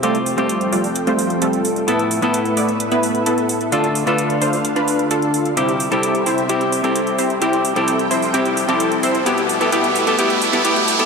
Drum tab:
HH |xxoxxxooxxoxxxox|xxoxxxoxxxoxxxox|xxoxxxooxxoxxxox|xxoxxxoxxxoxxxox|

HH |xxoxxxooxxoxxxox|xxoxxxoxxxoxxxox|